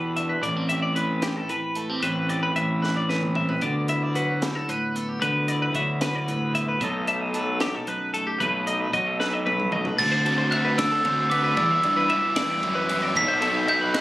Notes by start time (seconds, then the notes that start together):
Already playing: E2 B2 E3 D4 G4 A4 B4
0.16 D4 E5, closed hi-hat
0.29 B4
0.43 A1 A2 A3 D5, kick, closed hi-hat
0.57 C4
0.69 G4 E5, closed hi-hat
0.82 D5
0.96 E3 B4, closed hi-hat
1.22 G4, snare, closed hi-hat
1.37 A4
1.49 E3 B4, closed hi-hat
1.75 A3 A4, closed hi-hat
1.89 C4 G4
2.02 A1 A2 C4 B4, kick, closed hi-hat
2.29 G4 D5, closed hi-hat
2.43 B4
2.56 A1 E3 B4 E5, kick, closed hi-hat
2.82 G4 B4, snare
2.96 D5
3.09 E3 B4, snare
3.23 mid tom
3.35 C4 E5, floor tom
3.49 B4, floor tom
3.61 D2 D3 B3 D5, kick, closed hi-hat
3.88 E4 E5, closed hi-hat
4.03 D5
4.15 F#3 F#4 B4, closed hi-hat
4.42 E4 G4, snare, closed hi-hat
4.55 A4
4.68 A2 B4, closed hi-hat
4.95 B3 A4, closed hi-hat
5.09 G4
5.22 D2 D3 B3 B4, kick, closed hi-hat
5.48 E4 D5, closed hi-hat
5.62 B4
5.75 D2 F#3 F#4 E5, kick, closed hi-hat
6.01 E4 B4, snare, closed hi-hat
6.15 D5
6.28 A2 B4, closed hi-hat
6.54 B3 E5, closed hi-hat
6.69 B4
6.81 B1 B2 F#3 A3 D#4 A4 D#5, kick, closed hi-hat
7.07 D#4 E5, closed hi-hat
7.21 D#5
7.34 F#3 A4 B4, closed hi-hat
7.60 D#4 G4, snare, closed hi-hat
7.75 A4
7.87 F#2 B4, closed hi-hat
8.14 A3 A4, closed hi-hat
8.27 G4
8.40 B1 B2 A3 B4, kick, closed hi-hat
8.67 D#4 D#5, closed hi-hat
8.80 B4
8.93 B1 F#3 F#4 D#5, kick, closed hi-hat
9.06 A4
9.20 D#4 B4, snare
9.33 D#5
9.45 F#2 B4, high tom
9.60 mid tom
9.72 A3 D#5, mid tom
9.85 B4, floor tom
9.99 D2 D3 A3 C4 F#4 A6, kick, crash
10.12 C5
10.25 D3 A3 C4 F#4 A4, ride
10.38 C5
10.51 D3 A3 C4 F#4 E5 F#6, ride
10.65 B4
10.78 D3 A3 C4 F#4 D5 E6, kick, snare, ride
10.92 A4
11.05 D2 D3 A3 C4 F#4 C5, ride
11.30 D3 A3 C4 F#4 B4 D6, ride
11.44 B4
11.57 E2 E3 G3 B3 E4 D5 E6, kick, ride
11.71 E5
11.83 G2 E3 G3 B3 E4 D5, ride
11.97 B4
12.09 E3 G3 B3 E4 E5, ride
12.36 E3 G3 B3 E4 D5, kick, snare, ride
12.63 F#2 E3 G3 B3 E4, ride
12.75 B4
12.89 E3 G3 B3 E4, ride
13.02 D5
13.15 B1 F#3 B3 D#4 A4 B6, kick, ride
13.28 C5
13.41 F#3 B3 D#4 A4, ride
13.54 C5
13.68 F#3 B3 D#4 A4 E5 G6, ride
13.81 B4
13.94 F#3 B3 D#4 A4 D#5 F#6, kick, snare, ride